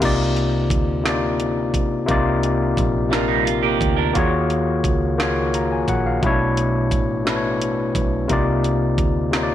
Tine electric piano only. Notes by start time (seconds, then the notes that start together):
0.00 C3 A#3 D#4 F4
0.05 D5
1.04 C3 A#3 D4 F4
1.09 D#4 D5
2.06 C3 A#3 D#4
2.10 F4 D5
3.10 C3 A#3 D#4 F4
3.15 A#4
4.13 D#3 A#3 F4 F#4
4.17 G#4 C#5
5.17 D#3 A#3 F4 F#4
5.22 G#4 C#5
5.55 A#5
5.72 G#5
5.89 F#5
6.06 F5
6.21 B2 A3 C#4
6.25 E4 C#5
6.30 D4
7.24 B2 A3 D4
7.29 E4 B4
7.36 C#5
8.28 C3 A#3 D#4
8.32 F4 D5
9.31 C3 A#3 D#4
9.35 F4 C#5
9.43 D5